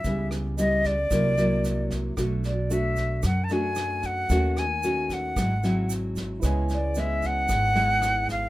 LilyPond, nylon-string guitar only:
\new Staff \with { instrumentName = "Nylon-string guitar" } { \time 4/4 \key cis \phrygian \tempo 4 = 113 << { <g b e'>4 <g b e'>8 r8 <fis bes e'>8 <fis bes e'>4. | <a d' fis'>8 r8 <a d' fis'>4 r8 <a d' fis'>4. | <a cis' fis'>8 r8 <a cis' fis'>4 <fis bis e'>8 <fis bis e'>4. | <gis b e'>8 r8 <gis b e'>4. <gis b e'>4. | } \\ { cis2 c2 | b,2 fis,2 | dis2 gis,2 | cis2 gis,2 | } >> }